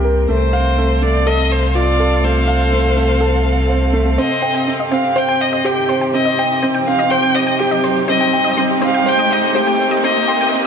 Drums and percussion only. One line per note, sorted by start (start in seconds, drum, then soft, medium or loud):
4.18 shaker soft
4.42 shaker medium
4.55 shaker soft
4.67 shaker soft
4.91 shaker medium
5.04 shaker medium
5.16 shaker soft
5.41 shaker medium
5.53 shaker soft
5.64 shaker soft
5.90 shaker medium
6.01 shaker medium
6.14 shaker soft
6.39 shaker medium
6.51 shaker soft
6.63 shaker soft
6.88 shaker medium
7.00 shaker medium
7.12 shaker soft
7.36 shaker medium
7.48 shaker soft
7.60 shaker soft
7.85 shaker medium
7.97 shaker medium
8.08 shaker medium
8.33 shaker medium
8.46 shaker soft
8.57 shaker soft
8.82 shaker medium
8.94 shaker medium
9.07 shaker soft
9.31 shaker medium
9.43 shaker medium
9.55 shaker soft
9.80 shaker medium
9.93 shaker medium
10.04 shaker medium
10.28 shaker medium
10.41 shaker soft
10.53 shaker medium